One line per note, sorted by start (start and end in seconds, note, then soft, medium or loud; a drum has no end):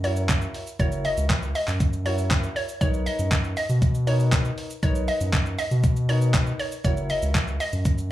0.00 0.47 F#2 loud
0.00 0.64 E4 medium
0.00 0.64 F#4 medium
0.00 open hi-hat medium
0.00 shaker medium
0.04 0.64 A#4 medium
0.04 0.14 C#5 medium
0.04 0.64 C#5 medium
0.17 shaker medium
0.29 kick loud
0.29 clap loud
0.29 closed hi-hat medium
0.29 shaker medium
0.42 shaker soft
0.54 open hi-hat medium
0.54 shaker soft
0.67 shaker medium
0.79 1.07 F#1 loud
0.79 1.59 E4 medium
0.79 1.60 F#4 medium
0.79 1.60 A#4 medium
0.79 0.99 C#5 loud
0.79 1.60 C#5 medium
0.79 kick loud
0.79 closed hi-hat medium
0.79 shaker medium
0.92 shaker medium
1.05 1.40 D#5 medium
1.05 open hi-hat medium
1.05 shaker medium
1.17 1.53 C#2 medium
1.17 shaker medium
1.30 kick loud
1.30 clap loud
1.30 closed hi-hat medium
1.30 shaker medium
1.43 shaker soft
1.55 1.65 D#5 medium
1.55 open hi-hat medium
1.55 shaker medium
1.68 2.49 F#2 loud
1.68 clap medium
1.68 shaker medium
1.80 kick loud
1.80 closed hi-hat medium
1.80 shaker medium
1.93 shaker medium
2.05 2.65 E4 medium
2.05 2.66 F#4 medium
2.05 2.66 A#4 medium
2.05 2.25 C#5 medium
2.05 2.66 C#5 medium
2.05 open hi-hat medium
2.05 shaker medium
2.18 shaker medium
2.31 kick loud
2.31 clap loud
2.31 closed hi-hat medium
2.31 shaker medium
2.43 shaker soft
2.56 2.66 C#5 medium
2.56 open hi-hat medium
2.56 shaker medium
2.69 shaker medium
2.81 3.08 B1 loud
2.81 3.61 D#4 medium
2.81 3.61 A#4 medium
2.81 3.61 B4 medium
2.81 3.00 C#5 loud
2.81 3.61 C#5 medium
2.81 kick loud
2.81 closed hi-hat medium
2.81 shaker medium
2.94 shaker medium
3.06 3.42 D#5 loud
3.06 open hi-hat medium
3.06 shaker medium
3.19 3.55 F#2 loud
3.19 shaker medium
3.31 kick loud
3.31 clap loud
3.31 closed hi-hat medium
3.31 shaker medium
3.44 shaker soft
3.57 3.67 D#5 medium
3.57 open hi-hat medium
3.57 shaker medium
3.69 4.50 B2 loud
3.69 shaker medium
3.82 kick loud
3.82 closed hi-hat medium
3.82 shaker medium
3.95 shaker medium
4.07 4.67 D#4 medium
4.07 4.67 A#4 medium
4.07 4.67 B4 medium
4.07 4.17 C#5 medium
4.07 4.67 C#5 medium
4.07 open hi-hat medium
4.07 shaker medium
4.20 shaker medium
4.32 kick loud
4.32 clap loud
4.32 closed hi-hat medium
4.32 shaker medium
4.45 shaker soft
4.58 open hi-hat medium
4.58 shaker medium
4.70 shaker medium
4.83 5.10 B1 loud
4.83 5.63 D#4 medium
4.83 5.63 A#4 medium
4.83 5.63 B4 medium
4.83 5.02 C#5 loud
4.83 5.63 C#5 medium
4.83 kick loud
4.83 closed hi-hat medium
4.83 shaker medium
4.95 shaker medium
5.08 5.44 D#5 medium
5.08 open hi-hat medium
5.08 shaker soft
5.21 5.57 F#2 medium
5.21 shaker medium
5.33 kick loud
5.33 clap loud
5.33 closed hi-hat medium
5.33 shaker medium
5.46 shaker soft
5.59 5.68 D#5 medium
5.59 open hi-hat medium
5.59 shaker medium
5.71 6.52 B2 loud
5.71 shaker medium
5.84 kick loud
5.84 closed hi-hat medium
5.84 shaker medium
5.97 shaker medium
6.09 6.69 D#4 medium
6.09 6.69 A#4 medium
6.09 6.69 B4 medium
6.09 6.28 C#5 medium
6.09 6.69 C#5 medium
6.09 open hi-hat medium
6.09 shaker medium
6.22 shaker medium
6.34 kick loud
6.34 clap loud
6.34 closed hi-hat medium
6.34 shaker medium
6.47 shaker soft
6.59 6.69 C#5 medium
6.59 open hi-hat medium
6.59 shaker medium
6.72 shaker medium
6.84 7.12 F#1 loud
6.84 7.64 E4 medium
6.84 7.65 F#4 medium
6.84 7.65 A#4 medium
6.84 7.04 C#5 loud
6.84 7.65 C#5 medium
6.84 kick loud
6.84 closed hi-hat medium
6.84 shaker medium
6.97 shaker medium
7.10 7.45 D#5 loud
7.10 open hi-hat medium
7.10 shaker medium
7.22 7.58 C#2 medium
7.22 shaker medium
7.35 kick loud
7.35 clap loud
7.35 closed hi-hat medium
7.35 shaker medium
7.48 shaker soft
7.60 7.70 D#5 loud
7.60 open hi-hat medium
7.60 shaker medium
7.73 8.12 F#2 loud
7.73 shaker medium
7.85 kick loud
7.85 closed hi-hat medium
7.85 shaker medium
7.98 shaker medium